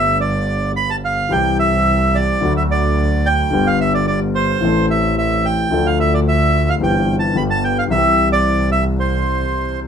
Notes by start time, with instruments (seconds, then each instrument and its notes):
Already playing: grand piano G1 G2 D3 A3 B3 G4, double bass G1, bandoneon E5
0.21 bandoneon D5
0.76 bandoneon B5
0.90 bandoneon A5
1.05 bandoneon F5
1.29 double bass C2, grand piano C2 C3 E3 G3 C4 G4, bandoneon G5
1.59 bandoneon E5
2.15 bandoneon D5
2.41 double bass D2, grand piano D2 D3 F#3 A3 F#4
2.57 bandoneon E5
2.71 bandoneon D5
3.26 bandoneon G5
3.50 double bass G1, grand piano G1 G2 D3 G3 B3
3.54 grand piano G4
3.67 bandoneon F5
3.81 bandoneon E5
3.94 bandoneon D5
4.07 bandoneon D5
4.35 bandoneon C5
4.61 double bass A1, grand piano A1 A2 E3 A3 C4
4.65 grand piano A4
4.91 bandoneon E5
5.18 bandoneon E5
5.45 bandoneon G5
5.70 double bass D2, grand piano D2 D3 F3 A3 D4 A4
5.86 bandoneon F5
6.00 bandoneon E5
6.14 bandoneon D5
6.28 bandoneon E5
6.70 bandoneon F5
6.79 double bass G1, grand piano G1 G2 E3 G3 C4 G4
6.83 bandoneon G5
7.19 bandoneon A5
7.33 grand piano G1 G2 D3 G3 B3 G4, double bass G1, bandoneon B5
7.50 bandoneon A5
7.64 bandoneon G5
7.78 bandoneon F5
7.88 grand piano C2 C3 E3 G3 C4 G4, double bass C2, bandoneon E5
8.32 bandoneon D5
8.72 bandoneon E5
9.00 bandoneon C5